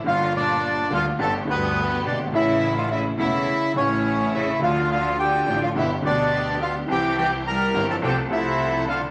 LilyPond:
<<
  \new Staff \with { instrumentName = "Bandoneon" } { \time 4/4 \key g \dorian \tempo 4 = 106 <f' f''>8 <d' d''>4 <f' f''>8 <a' a''>8 <b b'>4 <d' d''>8 | <e' e''>8. <f' f''>16 <e' e''>8 <e' e''>4 <cis' cis''>4 <e' e''>8 | <f' f''>8 <f' f''>8 <g' g''>8. <f' f''>16 <e' e''>8 <d' d''>4 <f' f''>8 | <g' g''>8 <g' g''>8 <bes' bes''>8. <a' a''>16 <g' g''>8 <e' e''>4 <f' f''>8 | }
  \new Staff \with { instrumentName = "String section" } { \time 4/4 \key g \dorian <g bes f'>4. <g bes f'>8 <a b g'>8 <a b g'>4. | <a cis' e'>4. <a cis' e'>8 r8 <a cis' e'>4. | <a d' f'>4. <a d' f'>8 <b d' g'>8 <b d' g'>4. | <c' e' g'>4. <c' e' g'>8 <c' f' a'>8 <f c' a'>4. | }
  \new Staff \with { instrumentName = "Upright piano" } { \clef bass \time 4/4 \key g \dorian << { <g,, g, d g bes f'>4. <d, d g bes f'>8 <g,, g, d a b g'>8 <d, d a b g'>4. | <a,, a, cis e a e'>4. <e,, e, cis e a e'>8 r8 <a,, a, cis e a e'>4. | <d, d f a f'>4. <a,, a, d f a f'>8 <g,, g, d g b g'>8 <d, d g b g'>4. | <c, c e g c' g'>4. <g,, g, e g c' g'>8 <c, c f a c' a'>8 <c, c f a c' a'>4. | } \\ { r2. r8 r32 fis,,32 g,,32 gis,,32 | r1 | r1 | r1 | } >> }
  \new Staff \with { instrumentName = "Cello" } { \clef bass \time 4/4 \key g \dorian d8 bes,4 d8 d8 g,4 b,8 | cis8. d16 cis8 cis4 a,4 cis8 | d8 d8 d8. d16 b,8 b,4 d8 | e8 e8 g8. f16 c8 c4 d8 | }
  \new Staff \with { instrumentName = "Double bass" } { \clef bass \time 4/4 \key g \dorian g,,4. d,8 g,,8 d,4 g,,8 | a,,4. e,,8 r8 a,,4. | d,4. a,,8 g,,8 d,4. | c,4. g,,8 c,8 c,4. | }
>>